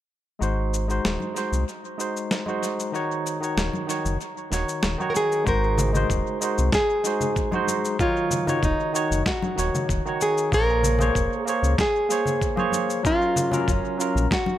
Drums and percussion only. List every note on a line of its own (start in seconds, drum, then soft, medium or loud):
0.42 cabasa soft
0.74 cabasa medium
0.90 cabasa soft
1.05 snare medium
1.05 cabasa soft
1.20 high conga medium
1.36 cabasa medium
1.53 cabasa soft
1.69 cabasa soft
2.00 cabasa medium
2.17 cabasa soft
2.31 snare loud
2.31 cabasa soft
2.46 high conga soft
2.63 cabasa medium
2.80 cabasa soft
2.95 cabasa soft
3.27 cabasa medium
3.43 cabasa soft
3.58 snare medium
3.58 cabasa soft
3.73 high conga medium
3.90 cabasa medium
4.06 cabasa soft
4.21 cabasa soft
4.52 snare soft
4.52 cabasa medium
4.69 cabasa soft
4.83 snare loud
4.83 cabasa soft
5.00 high conga medium
5.15 cabasa medium
5.32 cabasa soft
5.47 kick medium
5.47 cabasa soft
5.78 low conga medium
5.78 cabasa medium
5.94 low conga medium
5.94 cabasa soft
6.10 kick loud
6.10 cabasa soft
6.42 cabasa medium
6.58 cabasa soft
6.72 kick medium
6.72 snare medium
6.72 cabasa soft
7.05 cabasa medium
7.21 low conga medium
7.21 cabasa soft
7.36 kick medium
7.36 cabasa soft
7.52 high conga medium
7.67 high conga medium
7.67 cabasa medium
7.85 cabasa soft
7.99 kick loud
7.99 cabasa soft
8.31 low conga medium
8.31 cabasa medium
8.47 low conga medium
8.47 cabasa soft
8.63 kick loud
8.63 cabasa soft
8.95 cabasa medium
9.12 cabasa soft
9.26 kick loud
9.26 snare medium
9.26 cabasa soft
9.43 high conga loud
9.59 cabasa medium
9.75 low conga medium
9.75 cabasa soft
9.89 kick loud
9.89 cabasa soft
10.21 cabasa medium
10.38 cabasa soft
10.52 kick loud
10.52 cabasa soft
10.83 low conga medium
10.83 cabasa medium
10.99 low conga medium
10.99 cabasa soft
11.15 kick loud
11.15 cabasa soft
11.48 cabasa medium
11.64 cabasa soft
11.78 kick loud
11.78 snare medium
11.78 cabasa soft
12.10 cabasa medium
12.26 low conga medium
12.26 cabasa soft
12.41 kick medium
12.41 cabasa soft
12.57 high conga medium
12.72 high conga medium
12.72 cabasa medium
12.90 cabasa soft
13.05 kick loud
13.05 cabasa soft
13.36 low conga medium
13.36 cabasa medium
13.52 low conga medium
13.52 cabasa soft
13.68 kick loud
13.68 cabasa soft
14.00 cabasa medium
14.17 cabasa soft
14.31 kick loud
14.31 snare medium
14.31 cabasa soft
14.46 high conga medium